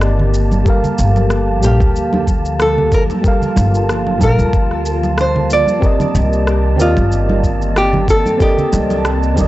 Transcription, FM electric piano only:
0.00 0.68 C4 medium
0.00 0.65 G4 medium
0.00 0.68 A#4 medium
0.00 0.67 D5 medium
0.00 0.68 D#5 medium
0.64 1.58 G3 medium
0.64 1.59 G4 medium
0.64 1.60 A4 medium
0.68 1.60 A#4 medium
0.68 1.61 F5 medium
1.60 3.20 G3 medium
1.60 3.20 G4 medium
1.60 3.21 A4 medium
1.65 3.22 A#3 medium
1.65 3.23 F5 medium
3.22 4.16 G3 medium
3.22 4.17 G4 medium
3.22 4.18 A4 medium
3.26 4.19 A#4 medium
3.26 4.19 F5 loud
4.18 5.77 G3 medium
4.18 5.78 G4 medium
4.18 5.79 A5 medium
4.23 5.80 A#4 medium
4.23 5.81 F5 medium
5.80 6.74 C4 medium
5.80 6.75 G4 medium
5.80 6.76 A#4 medium
5.84 6.77 D5 medium
5.84 6.77 D#5 medium
6.76 8.35 C4 medium
6.76 8.36 G4 medium
6.76 8.37 A#4 medium
6.81 8.38 D5 medium
6.81 8.39 D#5 medium
8.38 9.32 C4 medium
8.38 9.33 G4 medium
8.38 9.34 A#4 medium
8.42 9.35 D5 medium
8.42 9.35 D#5 medium
9.35 9.48 C4 medium
9.35 9.48 G4 medium
9.35 9.48 A#4 medium
9.39 9.48 D5 medium
9.39 9.48 D#5 medium

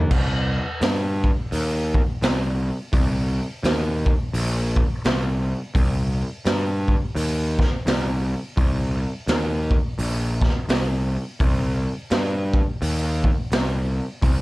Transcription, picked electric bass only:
0.11 0.57 C2 medium
0.81 1.28 G2 medium
1.52 1.99 D#2 medium
2.22 2.69 C2 medium
2.93 3.40 C2 loud
3.63 4.10 D#2 medium
4.33 4.80 A#1 medium
5.05 5.52 C2 medium
5.75 6.22 C2 medium
6.45 6.92 G2 medium
7.15 7.62 D#2 medium
7.86 8.33 C2 medium
8.57 9.04 C2 medium
9.27 9.74 D#2 medium
9.99 10.45 A#1 medium
10.69 11.16 C2 medium
11.40 11.87 C2 medium
12.11 12.58 G2 medium
12.82 13.28 D#2 medium
13.52 13.98 C2 medium
14.22 14.42 C2 medium

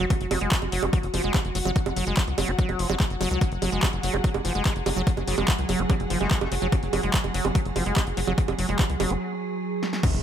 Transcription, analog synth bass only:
0.21 0.27 F#1 medium
0.31 0.38 F#1 loud
0.41 0.48 F#1 medium
0.62 0.69 F#1 medium
0.72 0.79 F#1 loud
0.83 0.89 F#1 medium
1.03 1.10 F#1 medium
1.14 1.20 F#1 medium
1.24 1.31 F#1 medium
1.45 1.51 F#1 medium
1.55 1.62 F#1 loud
1.65 1.72 F#1 loud
1.86 1.93 F#1 medium
1.97 2.03 F#1 medium
2.07 2.13 F#1 medium
2.28 2.34 C#2 medium
2.38 2.44 F#1 loud
2.48 2.55 F#1 medium
2.69 2.76 F#1 medium
2.79 2.86 F#1 loud
2.90 2.96 F#1 medium
3.10 3.17 F#1 medium
3.21 3.27 F#1 loud
3.31 3.38 C#2 loud
3.52 3.58 F#1 medium
3.62 3.69 F#1 medium
3.72 3.79 F#1 medium
3.93 4.00 F#1 medium
4.03 4.10 F#1 loud
4.14 4.20 F#1 medium
4.34 4.41 F#1 medium
4.45 4.51 F#1 loud
4.55 4.62 F#1 medium
4.76 4.82 F#1 medium
4.86 4.93 F#1 loud
4.96 5.03 F#1 loud
5.17 5.24 F#1 medium
5.28 5.34 F#1 medium
5.38 5.44 F#1 medium
5.59 5.65 C#2 medium
5.69 5.76 F#1 loud
5.79 5.86 F#1 medium
6.00 6.07 F#1 medium
6.10 6.17 F#1 medium
6.21 6.27 F#1 medium
6.41 6.48 F#1 medium
6.52 6.58 F#1 loud
6.62 6.69 F#1 medium
6.83 6.89 F#1 medium
6.93 7.00 F#1 medium
7.03 7.10 F#1 medium
7.24 7.31 F#1 medium
7.34 7.41 F#1 loud
7.45 7.51 F#1 medium
7.65 7.72 F#1 medium
7.76 7.82 F#1 loud
7.86 7.93 F#1 medium
8.07 8.13 F#1 medium
8.17 8.24 F#1 loud
8.28 8.34 F#1 medium
8.48 8.55 F#1 medium
8.59 8.65 F#1 medium
8.69 8.76 F#1 medium
8.90 8.96 C#2 medium
9.00 9.07 F#1 loud
9.10 9.17 F#1 medium
10.14 10.20 F#1 medium

